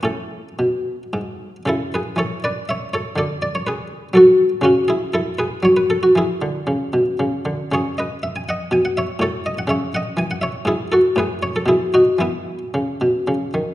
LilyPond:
<<
  \new Staff \with { instrumentName = "Harpsichord" } { \time 3/4 \key a \major \tempo 4 = 118 << { a'2~ a'8 r8 | <e' a'>8 <gis' b'>8 <a' cis''>8 <b' d''>8 <cis'' e''>8 <a' cis''>8 | <a' d''>8 d''16 cis''16 <gis' b'>4 <fis' a'>4 | <cis' fis'>8 <e' gis'>8 <e' a'>8 <gis' b'>8 cis''16 b'16 a'16 fis'16 |
<e' gis'>2 r4 | \key e \major <gis' cis''>8 <b' dis''>8 e''16 gis''16 <dis'' fis''>8 gis''16 fis''16 <cis'' e''>8 | <a' cis''>8 dis''16 fis''16 <cis'' e''>8 <dis'' fis''>8 gis''16 fis''16 <cis'' e''>8 | <e' gis'>8 <fis' a'>8 <gis' b'>8 cis''16 a'16 <e' gis'>8 <dis' fis'>8 |
<b e'>2~ <b e'>8 r8 | } \\ { cis'2. | r2. | r2. | r2. |
r2. | r2. | r2. | r2. |
r2. | } >> }
  \new Staff \with { instrumentName = "Harpsichord" } { \clef bass \time 3/4 \key a \major a,4 b,4 gis,4 | cis4 e2 | d2 fis4 | cis2 fis4 |
e8 d8 cis8 b,8 cis8 d8 | \key e \major cis2 b,4 | a,4 cis4 e4 | gis,4 a,4 b,4 |
e4 cis8 b,8 cis8 dis8 | }
>>